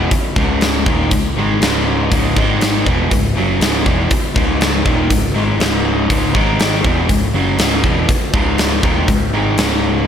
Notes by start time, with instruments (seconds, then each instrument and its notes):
Already playing: distorted electric guitar E2 B2 E3
0.11 muted picked electric bass stroke, muted distorted electric guitar stroke, muted overdriven electric guitar stroke, kick, open hi-hat
0.36 picked electric bass C#1, distorted electric guitar C#2 G#2 C#3, kick
0.61 snare, open hi-hat
0.86 picked electric bass D#1, distorted electric guitar D#2 A#2 D#3, kick
1.11 picked electric bass C#1, distorted electric guitar C#2 G#2, kick, open hi-hat
1.36 picked electric bass G#1, distorted electric guitar G#2 D#3 G#3
1.62 picked electric bass C#1, distorted electric guitar C#2 G#2 C#3, snare, open hi-hat
2.11 picked electric bass C#1, distorted electric guitar C#2 G#2 C#3, kick, open hi-hat
2.36 picked electric bass G#1, distorted electric guitar G#2 D#3 G#3, kick
2.61 snare, open hi-hat
2.86 picked electric bass E1, distorted electric guitar E2 B2 E3, kick
3.11 picked electric bass C#1, distorted electric guitar C#2 G#2, kick, open hi-hat
3.36 picked electric bass F#1, distorted electric guitar F#2 C#3 F#3
3.61 picked electric bass C#1, distorted electric guitar C#2 G#2 C#3, snare, open hi-hat
3.85 picked electric bass E1, distorted electric guitar E2 B2 E3, kick
4.11 muted picked electric bass stroke, muted distorted electric guitar stroke, muted overdriven electric guitar stroke, kick, open hi-hat
4.34 picked electric bass C#1, distorted electric guitar C#2 G#2 C#3, kick
4.61 snare, open hi-hat
4.84 picked electric bass D#1, distorted electric guitar D#2 A#2 D#3, kick
5.10 picked electric bass C#1, distorted electric guitar C#2 G#2, kick, open hi-hat
5.34 picked electric bass G#1, distorted electric guitar G#2 D#3 G#3
5.59 picked electric bass C#1, distorted electric guitar C#2 G#2 C#3, snare, open hi-hat
6.09 picked electric bass C#1, distorted electric guitar C#2 G#2 C#3, kick, open hi-hat
6.34 picked electric bass G#1, distorted electric guitar G#2 D#3 G#3, kick
6.60 snare, open hi-hat
6.84 picked electric bass E1, distorted electric guitar E2 B2 E3, kick
7.08 picked electric bass C#1, distorted electric guitar C#2 G#2, kick, open hi-hat
7.34 picked electric bass F#1, distorted electric guitar F#2 C#3 F#3
7.58 picked electric bass C#1, distorted electric guitar C#2 G#2 C#3, snare, open hi-hat
7.84 picked electric bass E1, distorted electric guitar E2 B2 E3, kick
8.09 muted picked electric bass stroke, muted distorted electric guitar stroke, muted overdriven electric guitar stroke, kick, open hi-hat
8.34 picked electric bass C#1, distorted electric guitar C#2 G#2 C#3, kick
8.58 snare, open hi-hat
8.83 picked electric bass D#1, distorted electric guitar D#2 A#2 D#3, kick
9.08 picked electric bass C#1, distorted electric guitar C#2 G#2, kick, open hi-hat
9.33 picked electric bass G#1, distorted electric guitar G#2 D#3 G#3
9.58 picked electric bass C#1, distorted electric guitar C#2 G#2 C#3, snare, open hi-hat